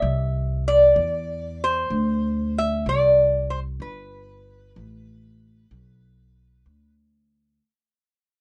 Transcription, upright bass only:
0.02 C2
0.96 E2
1.90 D2
2.86 C2
3.80 G1
4.76 A1
5.71 B1
6.66 D2

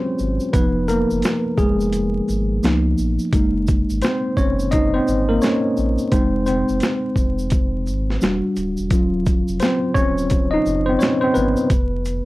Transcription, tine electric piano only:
Already playing: G#3 C4 C#4 G4 G#4 C5 C#5
0.53 F3 B3 D#4 B4
0.88 A#3 A#4
1.58 G#3 G#4
2.63 F3 A#3 B3 D#4
3.33 G#3 A#3 D#4
4.02 C4 C5
4.37 C#4 C#5
4.71 D#4 D#5
4.94 C4 C5
5.29 A#3 A#4
5.42 C#4 C#5
6.12 G#3 C4 D#4 C5
6.46 C4 C5
8.22 G3 D4 F#4
8.91 F#3 C#4 F4
9.60 C4 C5
9.94 C#4 C#5
10.51 D#4 D#5
10.86 C4 C5
10.99 C#4 C#5
11.21 C4 C5
11.34 B3 B4

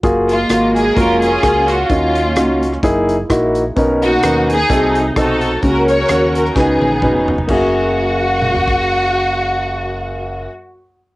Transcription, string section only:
0.30 G#3 A#3 F4
0.75 G#4
0.96 C#4 F4 A#4
1.20 C#4 F4 G#4
1.68 F#4
1.89 A#3 C#4 F4
4.03 A#3 D#4 F#4
4.50 D#4 G#4
5.16 D#4 F#4 A4
5.64 C#4 F#4 A#4
5.88 F#4 A#4 C#5
6.36 A#4
6.56 B3 D#4 G#4
7.49 F#4

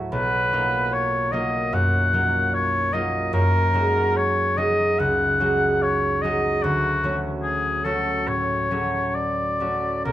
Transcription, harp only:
Already playing: D2 A2 F#3 A3 E4 F#4
0.12 B1
0.52 F#3 A#3 D#4 F4
1.32 F#3 A#3 D#4 F4
1.73 F#2
2.13 F#3 A#3 D#4 F4
2.93 F#3 A#3 D#4 F4
3.33 F#2
3.73 F#3 G#3 D#4 F#4
4.58 F#3 G#3 D#4 F#4
4.99 C#2
5.40 F#3 G#3 D#4 F#4
6.23 F#3 G#3 D#4 F#4
6.64 D2
7.04 F#3 A3 C#4 F#4
7.84 F#3 A3 C#4 F#4
8.27 A2
8.71 F#3 A3 C#4 F#4
9.60 F#3 A3 C#4 F#4
10.05 B1

